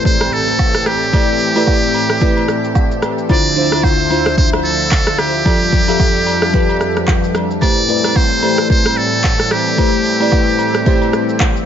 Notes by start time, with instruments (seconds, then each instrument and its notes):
Already playing: analog synth pad A2 E3 C4 G4 A4, fm electric piano A3 E4 G4 B4 C5 D5, impact
0.05 muted trumpet C5, kick, shaker
0.21 cross-stick, high agogo, shaker
0.32 muted trumpet A4, shaker
0.48 shaker
0.59 kick, low woodblock, shaker
0.75 cross-stick, shaker
0.86 muted trumpet G4, cross-stick, high agogo, shaker
1.02 shaker
1.13 fm electric piano A3 E4 G4 B4 D5, kick, high agogo, shaker
1.29 shaker
1.40 shaker
1.55 fm electric piano A3 E4 G4 B4 D5, high agogo, shaker
1.67 kick, low woodblock, shaker
1.83 shaker
1.94 high agogo, shaker
2.10 cross-stick, shaker
2.21 fm electric piano A3 E4 G4 B4 D5, kick, shaker
2.37 high agogo, shaker
2.48 cross-stick, shaker
2.64 shaker
2.75 kick, low woodblock, shaker
2.91 shaker
3.02 cross-stick, high agogo, shaker
3.18 shaker
3.29 analog synth pad D2 D3 F3 C5 E5, fm electric piano D3 D4 E4 F4 C5, muted trumpet D5, kick, high agogo, shaker
3.45 shaker
3.56 fm electric piano D3 D4 E4 F4 C5, shaker
3.72 cross-stick, high agogo, shaker
3.83 muted trumpet C5, kick, low woodblock, shaker
4.00 shaker
4.10 fm electric piano D3 D4 E4 F4 C5, high agogo, shaker
4.26 cross-stick, shaker
4.37 muted trumpet C5, kick, shaker
4.53 cross-stick, high agogo, shaker
4.65 muted trumpet A4, shaker
4.80 shaker
4.91 kick, clap, low woodblock, shaker
5.07 cross-stick, shaker
5.18 muted trumpet G4, cross-stick, high agogo, shaker
5.34 shaker
5.45 analog synth pad F2 G3 D4 A4, fm electric piano F3 F4 G4 A4 D5, kick, high agogo, shaker
5.61 shaker
5.72 kick, shaker
5.88 fm electric piano F3 F4 G4 A4 E5, high agogo, shaker
5.99 kick, low woodblock, shaker
6.16 shaker
6.26 high agogo, shaker
6.42 cross-stick, shaker
6.53 fm electric piano F3 F4 G4 A4 B4, kick, shaker
6.69 high agogo, shaker
6.81 cross-stick, shaker
6.96 cross-stick, shaker
7.07 kick, clap, low woodblock, shaker
7.24 shaker
7.35 cross-stick, high agogo, shaker
7.51 shaker
7.61 analog synth pad A2 E3 C4 A4, fm electric piano A3 E4 G4 B4 C5, muted trumpet D5, kick, high agogo, shaker
7.77 shaker
7.88 fm electric piano A3 E4 G4 B4 D5, shaker
8.04 cross-stick, high agogo, shaker
8.15 muted trumpet C5, kick, low woodblock, shaker
8.32 shaker
8.42 fm electric piano A3 E4 G4 B4 C5, high agogo, shaker
8.58 cross-stick, shaker
8.69 muted trumpet C5, kick, shaker
8.86 cross-stick, high agogo
8.97 muted trumpet A4, shaker
9.13 shaker
9.24 kick, clap, low woodblock, shaker
9.39 cross-stick, shaker
9.51 muted trumpet G4, cross-stick, high agogo, shaker
9.67 shaker
9.78 fm electric piano A3 E4 G4 B4 C5, kick, high agogo, shaker
9.94 shaker
10.05 shaker
10.20 fm electric piano A3 E4 G4 B4 D5, high agogo, shaker
10.32 kick, low woodblock, shaker
10.48 shaker
10.59 high agogo, shaker
10.75 cross-stick, shaker
10.86 fm electric piano A3 E4 G4 B4 C5, kick, shaker
11.02 high agogo, shaker
11.13 cross-stick, shaker
11.29 shaker
11.40 kick, clap, low woodblock, shaker
11.56 shaker